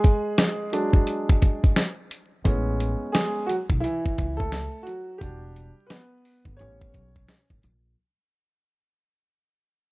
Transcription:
Already playing: G#3 G#4
0.04 kick, closed hi-hat
0.38 snare, closed hi-hat
0.72 F#3 G#3 D4, closed hi-hat
0.93 kick
1.07 closed hi-hat
1.29 kick
1.42 kick, closed hi-hat
1.64 kick
1.76 snare, closed hi-hat
2.11 closed hi-hat
2.44 A1 G#3 B3 C#4, kick, closed hi-hat
2.80 closed hi-hat
3.12 G#3 G#4, snare, closed hi-hat
3.46 F#3 F#4, closed hi-hat
3.70 B1, kick
3.80 E3 E4, closed hi-hat
4.06 kick
4.18 C#2, kick, closed hi-hat
4.37 A3 A4, kick
4.52 snare, closed hi-hat
4.83 F#4
4.87 F#3, closed hi-hat
5.18 E1 G3 F#4 G4, kick, closed hi-hat
5.22 D4
5.56 closed hi-hat
5.87 B4, snare, closed hi-hat
5.91 B3
6.25 open hi-hat
6.45 G1, kick
6.57 G3 B3 C#4 C#5, closed hi-hat
6.61 A1
6.81 kick
6.94 B1, kick, closed hi-hat
7.16 kick
7.28 snare, closed hi-hat
7.50 A1, kick
7.63 A#1, closed hi-hat

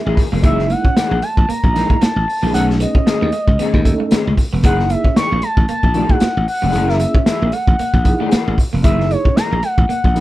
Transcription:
Already playing: E5
0.06 A1 E3 A#3 D#4 G#4
0.17 muted clean electric guitar stroke, kick, open hi-hat
0.32 F1 E3 A#3 D#4 G#4
0.42 F#1 E3 G#3 A#3 D#4 E4 G#4 E5, kick, closed hi-hat
0.58 muted clean electric guitar stroke, snare
0.70 A#3 F#5, closed hi-hat
0.85 C#4, kick
0.97 E3 A#3 D#4 G#4, muted clean electric guitar stroke, snare, closed hi-hat
1.11 A#1 A#3
1.22 A3 A5, closed hi-hat
1.37 A1, kick
1.49 A#3 A#5, muted slap bass stroke, closed hi-hat
1.64 A#1, muted clean electric guitar stroke, kick
1.74 E3 G#3 A#3 D#4 E4 G#4, snare, closed hi-hat
1.90 A3, kick
2.01 A#3 A5, muted slap bass stroke, snare, closed hi-hat
2.16 A1
2.28 muted clean electric guitar stroke, open hi-hat
2.42 A#1 E3 A#3 D#4 G#4
2.53 B1 D#3 A3 C#4 D#4 G#4 A4 F#5, closed hi-hat
2.69 muted clean electric guitar stroke, snare
2.80 B3 D#5, closed hi-hat
2.95 C#4, kick
3.06 D#3 A3 C#4 G#4, muted clean electric guitar stroke, snare, closed hi-hat
3.21 D#2 B3
3.32 A3, closed hi-hat
3.48 C#2, kick
3.59 D#3 A3 B3 C#4 G#4, muted slap bass stroke, closed hi-hat
3.74 D#2, muted clean electric guitar stroke, kick
3.84 A3 C#4 D#4 A4, kick, closed hi-hat
4.00 A3
4.11 D#3 A3 B3 C#4 G#4, muted slap bass stroke, snare, closed hi-hat
4.27 C#2
4.37 muted clean electric guitar stroke, kick, open hi-hat
4.53 F1 B3
4.63 F#1 E3 A#3 D#4 E4 G#4 F#5, kick, closed hi-hat
4.79 muted clean electric guitar stroke, snare
4.90 A#3 E5, closed hi-hat
5.04 C#4, kick
5.16 E3 A#3 D#4 G#4 C#6, muted clean electric guitar stroke, snare, closed hi-hat
5.32 A#1 A#3
5.42 A3 A5, closed hi-hat
5.57 A1, kick
5.68 A#3 A5, closed hi-hat
5.83 A#1, muted clean electric guitar stroke, kick
5.94 E3 A#3 D#4 E4 F#4 G#4, closed hi-hat
6.09 A3 F#5, kick
6.20 A#3, muted slap bass stroke, snare, closed hi-hat
6.37 A1
6.48 F#5, muted clean electric guitar stroke, open hi-hat
6.62 F1 E3 A#3 D#4 G#4
6.72 F#1 E3 A#3 C#4 D#4 E4 G#4 A#4, closed hi-hat
6.89 E5, muted clean electric guitar stroke, snare
7.00 A#3, closed hi-hat
7.15 C#4, kick
7.26 E3 A#3 D#4 G#4 E5, muted clean electric guitar stroke, snare, closed hi-hat
7.42 A#1 A#3
7.52 A3 F#5, closed hi-hat
7.67 A1, kick
7.79 A#3, muted slap bass stroke, closed hi-hat
7.94 A#1, muted clean electric guitar stroke, kick
8.04 A#3 D#4 E4 G#4, kick, closed hi-hat
8.20 E3 A3 A#3 D#4 G#4
8.31 E3 A#3 D#4 G#4, muted slap bass stroke, snare, closed hi-hat
8.48 A1
8.58 muted clean electric guitar stroke, kick, open hi-hat
8.73 F1 A#3
8.83 F#1 E3 A#3 D#4 E4 G#4 E5, kick, closed hi-hat
8.99 muted clean electric guitar stroke, snare
9.11 A#3 C#5, closed hi-hat
9.25 C#4, kick
9.36 E3 A#3 D#4 G#4 A#5, muted clean electric guitar stroke, snare, closed hi-hat
9.52 A#1 A#3
9.63 A3 F#5, closed hi-hat
9.78 A1, kick
9.89 A#3 F#5, muted slap bass stroke, closed hi-hat
10.04 A#1, muted clean electric guitar stroke, kick
10.14 E3 A#3 D#4 E4 G#4, snare, closed hi-hat

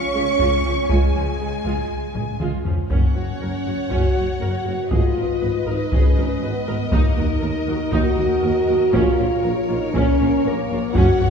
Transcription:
Already playing: C#4 C#5 C#6
0.14 C#2 C#3 G#3
0.39 C#2 G#3 F4, taiko
0.64 C#2 F3 C#4
0.89 C#2 G#3 F4 G#4 G#5, taiko
1.15 C#2 F3 C#4
1.40 C#2 C#3 G#3
1.65 C#2 G#3 F4, taiko
2.13 C#2 C#3 G#3, taiko low-mid
2.40 C#2 G#3 F4, taiko mid
2.65 C#2 F3 C#4, taiko low
2.90 F#1 F#2 A#3 C#4 C#5 F#5, taiko
3.15 F#1 F#2 C#4 F#4
3.40 F#1 F#2 A#4
3.65 F#1 F#2 F#4
3.90 F#1 F#2 C#4 F#4, taiko
4.15 F#1 F#2 F#4
4.40 F#1 F#2 A#4
4.65 F#1 F#2 F#4
4.90 G#1 G#2 F4 G#4 B4 D#5, taiko
5.16 G#1 G#2 A#4
5.41 G#1 G#2 B4
5.66 G#1 G#2 D#4 A#4
5.91 G#1 G#2 C#4 G#4, taiko
6.16 G#1 G#2 A#4
6.41 G#1 G#2 B3 B4
6.67 G#1 G#2 A#4
6.92 D#2 A#3 D#4 A#4, taiko
7.16 D#2 D#4 F#4
7.41 D#2 A#4
7.67 D#2 F#4
7.91 D#2 D#4 F#4, taiko
8.17 D#2 F#4
8.42 D#2 A#4
8.67 D#2 F#4
8.93 A#1 A#2 C#4 F4 C#5, taiko
9.19 A#1 A#2 F4
9.43 A#1 A#2 A#4
9.68 A#1 A#2 D#4 F4
9.92 A#1 A#2 C#4, taiko
10.19 A#1 A#2 F4
10.44 A#1 A#2 A#3 A#4
10.69 A#1 A#2 F4
10.94 F#1 F#2 C#4 F#4 C#5 F#5, taiko
11.20 F#1 F#2 F#4

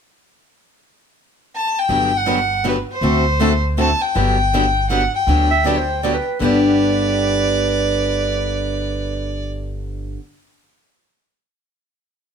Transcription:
1.56 A5
1.79 G5
1.89 G1 D3 F#3 B3 D4 G4
2.17 F#5
2.27 D3 F#3 B3 D4 G4
2.64 D3 F#3 B3 D4 G4
2.68 B4
2.92 C5
3.01 D2 D3 A3 C4 F#4 A4
3.40 D3 A3 C4 F#4 A4
3.78 D3 A3 C4 F#4 A4 A5
4.01 G5
4.15 G1 D3 F#3 B3 D4 G4
4.54 D3 F#3 B3 D4 G4
4.90 D3 F#3 B3 D4 G4 F#5
5.15 G5
5.27 D2 D3 F#3 B3 D4 G4
5.51 E5
5.66 D3 F#3 B3 D4 G4 D5
5.77 C5
6.03 D3 F#3 B3 D4 G4 D5
6.14 B4
6.39 G1 G2 D3 B3 D4 G4 B4 D5

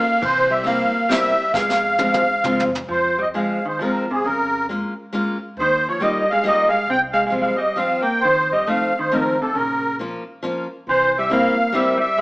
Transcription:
Already playing: A#3 F5
0.22 C2 E3 C5, kick, ride
0.50 G3 E5
0.64 G3 A#3 C4 E4 F5, ride
1.09 G3 A#3 C4 E4 E5, snare, ride
1.53 F2 G#3 F5, kick, snare
1.70 snare
1.98 F3 G#3 C4 F4, high tom
2.14 mid tom
2.21 G#2
2.44 G2 F3 G#3 C4 F4, mid tom
2.60 floor tom
2.67 F2
2.75 floor tom
2.89 F2 F3 C5
3.19 G3 D#5
3.34 F3 G#3 C4 F4 F5
3.65 D#3 C5
3.79 F3 G#3 C4 F4 A#4
4.11 C3 G#4
4.24 F2 C#3 A#4
4.69 G#3 A#3 C#4 F4
5.13 G#3 A#3 C#4 F4
5.57 D#2 D#3 C5
5.89 F3 C#5
6.00 G3 A#3 D#4 F4 D#5
6.30 G#3 F5
6.44 G3 A#3 D#4 F4 D#5
6.69 G#3 F5
6.88 C2 C4 G5
7.13 G#3 F5
7.26 G#3 F5
7.30 F3 G3 C4 F4
7.42 G#3 F5
7.56 G3 D#5
7.76 F3 G3 C4 F4 F5
8.01 A#3 G5
8.21 F2 D#3 C5
8.52 G3 D#5
8.67 F3 A3 C4 D#4 F5
8.99 D#3 C5
9.11 D#3 F3 A3 C4 D#4 A#4
9.42 C3 A4
9.55 A#1 C#3 A#4
9.99 F3 A#3 C#4 F4
10.43 F3 A#3 C#4 F4
10.87 C2 E3 C5
11.18 G3 E5
11.29 G3 A#3 C4 E4 F5
11.72 G3 A#3 C4 E4 E5
11.97 G3 E5
12.18 F2

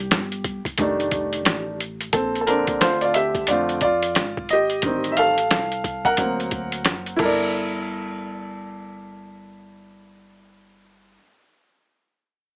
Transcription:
Already playing: G4
0.11 G1, snare, closed hi-hat
0.32 closed hi-hat
0.44 kick, closed hi-hat
0.65 muted upright bass stroke, kick, closed hi-hat
0.78 F1 D#3 G3 A3 D4, kick, closed hi-hat
1.00 closed hi-hat
1.11 kick, closed hi-hat
1.33 closed hi-hat
1.45 A1, snare, closed hi-hat
1.80 closed hi-hat
2.01 closed hi-hat
2.13 A#1 C4 A4, kick, closed hi-hat
2.35 closed hi-hat
2.41 A4
2.47 D3 C4 D4 A4 A#4, closed hi-hat
2.67 kick, closed hi-hat
2.81 D2 F4 C5, snare, closed hi-hat
3.01 F4 D5, closed hi-hat
3.14 G4 E5, closed hi-hat
3.35 kick, closed hi-hat
3.47 F2 D3 A3 C4 F4 D5, closed hi-hat
3.69 closed hi-hat
3.81 F4 D5, kick, closed hi-hat
4.03 closed hi-hat
4.15 G#1, snare, closed hi-hat
4.37 kick
4.49 G4 D#5, closed hi-hat
4.70 closed hi-hat
4.82 A1 D#3 G3, kick, closed hi-hat
4.86 C4
5.04 closed hi-hat
5.12 E5
5.17 A4 F5, closed hi-hat
5.38 closed hi-hat
5.51 C2, snare, closed hi-hat
5.72 closed hi-hat
5.84 kick, closed hi-hat
6.05 A#4 F#5, kick, closed hi-hat
6.17 D2 F#3 A#3 C4, kick, closed hi-hat
6.40 closed hi-hat
6.51 kick, closed hi-hat
6.72 closed hi-hat
6.85 F#1, snare, closed hi-hat
7.06 closed hi-hat
7.16 G1 E4 A4, kick, crash
7.23 A#4 D5

